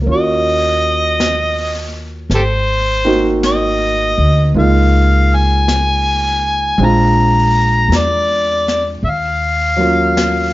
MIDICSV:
0, 0, Header, 1, 5, 480
1, 0, Start_track
1, 0, Key_signature, -5, "major"
1, 0, Tempo, 1121495
1, 30, Time_signature, 4, 2, 24, 8
1, 4508, End_track
2, 0, Start_track
2, 0, Title_t, "Harmonica"
2, 0, Program_c, 0, 22
2, 46, Note_on_c, 0, 75, 107
2, 821, Note_off_c, 0, 75, 0
2, 1004, Note_on_c, 0, 67, 45
2, 1004, Note_on_c, 0, 69, 45
2, 1004, Note_on_c, 0, 72, 64
2, 1034, Note_off_c, 0, 69, 0
2, 1041, Note_off_c, 0, 67, 0
2, 1457, Note_off_c, 0, 72, 0
2, 1482, Note_on_c, 0, 75, 71
2, 1937, Note_off_c, 0, 75, 0
2, 1966, Note_on_c, 0, 77, 79
2, 2291, Note_on_c, 0, 80, 81
2, 2297, Note_off_c, 0, 77, 0
2, 2933, Note_on_c, 0, 82, 83
2, 2939, Note_off_c, 0, 80, 0
2, 3411, Note_on_c, 0, 74, 75
2, 3417, Note_off_c, 0, 82, 0
2, 3801, Note_off_c, 0, 74, 0
2, 3872, Note_on_c, 0, 76, 50
2, 3893, Note_on_c, 0, 77, 78
2, 3900, Note_off_c, 0, 76, 0
2, 4508, Note_off_c, 0, 77, 0
2, 4508, End_track
3, 0, Start_track
3, 0, Title_t, "Grand piano"
3, 0, Program_c, 1, 0
3, 0, Control_c, 1, 64, 127
3, 7, Note_on_c, 1, 58, 34
3, 27, Note_on_c, 1, 61, 35
3, 36, Control_c, 1, 64, 0
3, 38, Note_on_c, 1, 65, 33
3, 58, Note_on_c, 1, 66, 38
3, 122, Control_c, 1, 64, 127
3, 976, Note_off_c, 1, 58, 0
3, 985, Note_off_c, 1, 61, 0
3, 991, Note_off_c, 1, 65, 0
3, 992, Control_c, 1, 64, 0
3, 1001, Note_off_c, 1, 66, 0
3, 1079, Control_c, 1, 64, 127
3, 1304, Note_on_c, 1, 58, 50
3, 1305, Note_on_c, 1, 60, 40
3, 1310, Note_on_c, 1, 63, 48
3, 1312, Note_on_c, 1, 66, 51
3, 1941, Note_off_c, 1, 58, 0
3, 1944, Note_off_c, 1, 60, 0
3, 1945, Note_off_c, 1, 63, 0
3, 1947, Note_off_c, 1, 66, 0
3, 1947, Note_on_c, 1, 58, 37
3, 1948, Note_on_c, 1, 56, 47
3, 1950, Control_c, 1, 64, 0
3, 1951, Note_on_c, 1, 63, 38
3, 1954, Note_on_c, 1, 65, 47
3, 2020, Control_c, 1, 64, 127
3, 2894, Note_off_c, 1, 56, 0
3, 2901, Note_on_c, 1, 56, 45
3, 2905, Note_off_c, 1, 58, 0
3, 2907, Note_off_c, 1, 63, 0
3, 2907, Note_on_c, 1, 60, 39
3, 2909, Note_off_c, 1, 65, 0
3, 2910, Control_c, 1, 64, 0
3, 2915, Note_on_c, 1, 62, 40
3, 2922, Note_on_c, 1, 65, 53
3, 2995, Control_c, 1, 64, 127
3, 3865, Note_off_c, 1, 56, 0
3, 3868, Note_off_c, 1, 60, 0
3, 3871, Control_c, 1, 64, 0
3, 3872, Note_off_c, 1, 62, 0
3, 3875, Note_off_c, 1, 65, 0
3, 3952, Control_c, 1, 64, 127
3, 4180, Note_on_c, 1, 54, 49
3, 4185, Note_on_c, 1, 58, 37
3, 4194, Note_on_c, 1, 61, 41
3, 4198, Note_on_c, 1, 65, 49
3, 4508, Note_off_c, 1, 54, 0
3, 4508, Note_off_c, 1, 58, 0
3, 4508, Note_off_c, 1, 61, 0
3, 4508, Note_off_c, 1, 65, 0
3, 4508, End_track
4, 0, Start_track
4, 0, Title_t, "Upright bass"
4, 0, Program_c, 2, 32
4, 29, Note_on_c, 2, 39, 55
4, 969, Note_off_c, 2, 39, 0
4, 983, Note_on_c, 2, 32, 69
4, 1769, Note_off_c, 2, 32, 0
4, 1788, Note_on_c, 2, 38, 59
4, 1934, Note_off_c, 2, 38, 0
4, 1944, Note_on_c, 2, 37, 63
4, 2887, Note_off_c, 2, 37, 0
4, 2902, Note_on_c, 2, 34, 74
4, 3366, Note_off_c, 2, 34, 0
4, 3375, Note_on_c, 2, 40, 64
4, 3845, Note_off_c, 2, 40, 0
4, 3863, Note_on_c, 2, 39, 56
4, 4508, Note_off_c, 2, 39, 0
4, 4508, End_track
5, 0, Start_track
5, 0, Title_t, "Drums"
5, 35, Note_on_c, 9, 25, 30
5, 514, Note_off_c, 9, 25, 0
5, 514, Note_on_c, 9, 25, 35
5, 514, Note_on_c, 9, 38, 38
5, 514, Note_on_c, 9, 44, 46
5, 557, Note_off_c, 9, 38, 0
5, 557, Note_off_c, 9, 44, 0
5, 988, Note_off_c, 9, 25, 0
5, 988, Note_on_c, 9, 25, 29
5, 988, Note_on_c, 9, 38, 24
5, 1030, Note_off_c, 9, 38, 0
5, 1469, Note_off_c, 9, 25, 0
5, 1469, Note_on_c, 9, 25, 28
5, 1469, Note_on_c, 9, 38, 36
5, 1469, Note_on_c, 9, 44, 45
5, 1512, Note_off_c, 9, 38, 0
5, 1512, Note_off_c, 9, 44, 0
5, 1952, Note_off_c, 9, 25, 0
5, 1952, Note_on_c, 9, 25, 31
5, 2432, Note_off_c, 9, 25, 0
5, 2432, Note_on_c, 9, 25, 32
5, 2432, Note_on_c, 9, 38, 38
5, 2432, Note_on_c, 9, 44, 43
5, 2475, Note_off_c, 9, 38, 0
5, 2475, Note_off_c, 9, 44, 0
5, 2914, Note_off_c, 9, 25, 0
5, 2914, Note_on_c, 9, 25, 38
5, 3391, Note_off_c, 9, 25, 0
5, 3391, Note_on_c, 9, 25, 28
5, 3391, Note_on_c, 9, 38, 39
5, 3391, Note_on_c, 9, 44, 40
5, 3434, Note_off_c, 9, 38, 0
5, 3434, Note_off_c, 9, 44, 0
5, 3715, Note_on_c, 9, 38, 21
5, 3758, Note_off_c, 9, 38, 0
5, 3873, Note_off_c, 9, 25, 0
5, 3873, Note_on_c, 9, 25, 35
5, 4353, Note_off_c, 9, 25, 0
5, 4353, Note_on_c, 9, 25, 29
5, 4353, Note_on_c, 9, 38, 39
5, 4353, Note_on_c, 9, 44, 43
5, 4396, Note_off_c, 9, 38, 0
5, 4396, Note_off_c, 9, 44, 0
5, 4508, Note_off_c, 9, 25, 0
5, 4508, End_track
0, 0, End_of_file